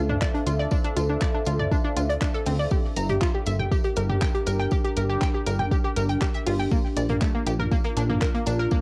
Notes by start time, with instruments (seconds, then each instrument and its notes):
Already playing: analog synth bass D2, ambient pad D4 A4 C5 E5 F5, impact
0.09 synth arpeggio sound D4, mid tom
0.21 synth arpeggio sound D5, kick, snare, clap, tambourine
0.34 synth arpeggio sound D4, closed hi-hat
0.46 analog synth bass D2, synth arpeggio sound F4, closed hi-hat, tambourine
0.59 synth arpeggio sound D5, snare
0.71 synth arpeggio sound D4, kick, tambourine
0.84 synth arpeggio sound D4, closed hi-hat
0.97 analog synth bass D2, synth arpeggio sound F4, closed hi-hat, tambourine
1.09 synth arpeggio sound D4
1.21 synth arpeggio sound D5, kick, snare, clap, tambourine
1.34 synth arpeggio sound D4
1.45 analog synth bass D2, synth arpeggio sound F4, closed hi-hat, tambourine
1.59 synth arpeggio sound D5, mid tom
1.72 synth arpeggio sound D4, kick, tambourine
1.84 synth arpeggio sound D4
1.97 analog synth bass D2, synth arpeggio sound F4, closed hi-hat, tambourine
2.09 synth arpeggio sound D5, closed hi-hat
2.22 synth arpeggio sound D4, kick, snare, clap, tambourine
2.34 synth arpeggio sound A4, closed hi-hat
2.46 analog synth bass D2, synth arpeggio sound C4, closed hi-hat, open hi-hat
2.59 synth arpeggio sound D5
2.71 synth arpeggio sound G4, ambient pad G4 A#4, kick, tambourine
2.85 snare
2.96 analog synth bass G1, synth arpeggio sound A#5, closed hi-hat, tambourine
3.09 synth arpeggio sound G4, closed hi-hat, mid tom
3.21 synth arpeggio sound F4, kick, snare, clap, tambourine
3.34 synth arpeggio sound G4
3.46 analog synth bass G1, synth arpeggio sound E5, closed hi-hat, tambourine
3.59 synth arpeggio sound G5, mid tom
3.72 synth arpeggio sound G4, kick, tambourine
3.84 synth arpeggio sound G4, closed hi-hat
3.96 analog synth bass G1, synth arpeggio sound A#4, closed hi-hat, tambourine
4.09 synth arpeggio sound G4, mid tom
4.21 synth arpeggio sound G5, kick, snare, clap, tambourine
4.34 synth arpeggio sound G4, closed hi-hat
4.46 analog synth bass G1, synth arpeggio sound A#4, closed hi-hat, tambourine
4.59 synth arpeggio sound G5, snare
4.71 synth arpeggio sound G4, kick, tambourine
4.84 synth arpeggio sound G4, closed hi-hat
4.96 analog synth bass G1, synth arpeggio sound A#4, closed hi-hat, tambourine
5.09 synth arpeggio sound G4
5.22 synth arpeggio sound G5, kick, snare, clap, tambourine
5.34 synth arpeggio sound G4
5.47 analog synth bass G1, synth arpeggio sound A#4, closed hi-hat, tambourine
5.59 synth arpeggio sound G5, mid tom
5.72 synth arpeggio sound G4, kick, tambourine
5.84 synth arpeggio sound G4
5.97 analog synth bass G1, synth arpeggio sound A#4, closed hi-hat, tambourine
6.09 synth arpeggio sound G5, closed hi-hat
6.21 synth arpeggio sound G4, kick, snare, clap, tambourine
6.34 synth arpeggio sound E5, closed hi-hat
6.47 analog synth bass G1, synth arpeggio sound F4, closed hi-hat, open hi-hat
6.59 synth arpeggio sound G5
6.71 synth arpeggio sound A#3, ambient pad F4 A#4, kick, tambourine
6.85 snare
6.97 analog synth bass A#1, synth arpeggio sound D5, closed hi-hat, tambourine
7.09 synth arpeggio sound A#3, closed hi-hat, mid tom
7.21 synth arpeggio sound A3, kick, snare, clap, tambourine
7.34 synth arpeggio sound A#3
7.47 analog synth bass A#1, synth arpeggio sound G4, closed hi-hat, tambourine
7.59 synth arpeggio sound A#4, mid tom
7.71 synth arpeggio sound A#3, kick, tambourine
7.84 synth arpeggio sound A#3, closed hi-hat
7.97 analog synth bass A#1, synth arpeggio sound D4, closed hi-hat, tambourine
8.09 synth arpeggio sound A#3, mid tom
8.20 synth arpeggio sound A#4, kick, snare, clap, tambourine
8.34 synth arpeggio sound A#3, closed hi-hat
8.46 analog synth bass A#1, synth arpeggio sound D4, closed hi-hat, tambourine
8.59 synth arpeggio sound A#4, snare
8.71 synth arpeggio sound A#3, kick, tambourine